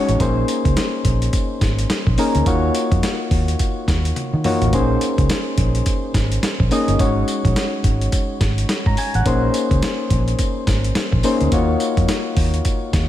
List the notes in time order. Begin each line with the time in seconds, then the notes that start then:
Already playing: G#3 C#4 D#4 F#4 C#5
0.09 A1, closed hi-hat
0.20 A#1 A#3 C#4 D#4 G#4 C5, kick, closed hi-hat, tambourine
0.48 closed hi-hat, tambourine
0.65 C#2, kick, closed hi-hat
0.76 snare, closed hi-hat, tambourine
1.05 A#1, kick, closed hi-hat
1.22 closed hi-hat
1.33 kick, closed hi-hat, tambourine
1.61 G#1, kick, snare, closed hi-hat, tambourine
1.79 closed hi-hat
1.90 snare, closed hi-hat, tambourine
2.07 A#1, kick
2.18 A#3 C#4 D#4 G#4 A#4, open hi-hat, tambourine
2.35 D2, closed hi-hat
2.46 D#2 A#3 D#4 F4 F#4 C#5, kick, closed hi-hat, tambourine
2.75 closed hi-hat, tambourine
2.92 F2, kick, closed hi-hat
3.03 snare, closed hi-hat, tambourine
3.31 D#2, kick, open hi-hat
3.48 closed hi-hat
3.59 kick, closed hi-hat, tambourine
3.88 D#2, kick, snare, closed hi-hat, tambourine
4.05 closed hi-hat
4.16 closed hi-hat, high tom
4.33 D#3
4.44 A#3 D#4 F4 F#4 C#5, mid tom, open hi-hat
4.62 A1, closed hi-hat, floor tom
4.73 A#1 A#3 C#4 D#4 G#4 C5, kick, closed hi-hat, tambourine
5.01 closed hi-hat, tambourine
5.18 C#2, kick, closed hi-hat
5.29 snare, closed hi-hat, tambourine
5.58 A#1, kick, closed hi-hat
5.75 closed hi-hat
5.86 kick, closed hi-hat, tambourine
6.14 G#1, kick, snare, closed hi-hat, tambourine
6.32 closed hi-hat
6.43 muted fingered electric bass stroke, snare, closed hi-hat, tambourine
6.60 A#1, kick
6.71 A#3 C#4 D#4 G#4 D#5, open hi-hat, tambourine
6.88 G1, closed hi-hat
6.99 G#1 G#3 C#4 D#4 F#4 C#5, kick, closed hi-hat, tambourine
7.28 closed hi-hat, tambourine
7.45 A#1, kick, closed hi-hat
7.56 snare, closed hi-hat, tambourine
7.84 G#1, kick, closed hi-hat
8.01 closed hi-hat
8.12 kick, closed hi-hat, tambourine
8.41 G#1, kick, snare, closed hi-hat, tambourine
8.58 closed hi-hat
8.69 snare, closed hi-hat, tambourine
8.86 G#2 A#5, kick
8.97 G#5, open hi-hat, tambourine
9.14 A1 F#5, closed hi-hat
9.26 A#1 A#3 C#4 D#4 G#4 C5, kick, closed hi-hat, tambourine
9.54 closed hi-hat, tambourine
9.71 C#2, kick, closed hi-hat
9.82 snare, closed hi-hat, tambourine
10.10 A#1, kick, closed hi-hat
10.28 closed hi-hat
10.39 kick, closed hi-hat, tambourine
10.67 G#1, kick, snare, closed hi-hat, tambourine
10.84 closed hi-hat
10.95 snare, closed hi-hat, tambourine
11.12 A#1, kick
11.23 A#3 C#4 D#4 G#4 C5, open hi-hat, tambourine
11.41 D2, closed hi-hat
11.52 D#2 A#3 D#4 F4 F#4 C#5, kick, closed hi-hat, tambourine
11.80 closed hi-hat, tambourine
11.97 F2, kick, closed hi-hat
12.08 snare, closed hi-hat, tambourine
12.37 D#2, kick, open hi-hat
12.54 closed hi-hat
12.65 kick, closed hi-hat, tambourine
12.93 D#2, kick, snare, closed hi-hat, tambourine